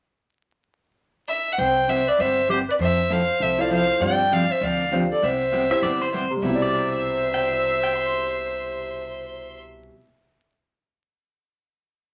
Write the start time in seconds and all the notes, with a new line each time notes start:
1.28 E5
1.52 F#5
1.58 C2 C3 G3 B3 E4 G4 C5 G5
1.88 C3 G3 B3 E4 G4 C5 E5
2.07 B4 D5
2.19 G1 C3 G3 B3 E4 G4 C5 E5
2.48 C3 G3 B3 E4 G4 C5
2.69 B4 D5
2.79 F2 F3 C4 E4 A4 C5 E5
3.09 F3 C4 E4 A4 C5 F5
3.40 C2 F3 C4 E4 A4 C5 E5
3.58 E4 F4 A4 C5 D5 F5
3.70 F3 C4 E4 A4 C5 F5
4.00 G2 C3 F3 C4 D4 F4 G4 C5 D5 G5
4.31 C3 F3 C4 D4 G4 D5 F5
4.51 C5 E5
4.61 D2 C3 F3 C4 D4 G4 D5 F5
4.91 C3 F3 C4 D4 F4 G4 C5
5.12 A4 D5
5.22 C2 C3 G3 B3 E4 G4 C5 E5
5.52 C3 G3 B3 E4 G4
5.70 C4 E4 G4 C5 E5
5.82 G1 C3 G3 B3 E4 G4 D5
6.01 C5
6.13 C3 G3 B3 E4 G4 C5
6.30 C3
6.37 G3
6.42 C2 B2 C3 G3 E4 G4 C5 E5
6.49 E4
6.55 D5
6.62 D5
6.92 E5
7.34 G5
7.53 E5
7.83 G5
7.95 C6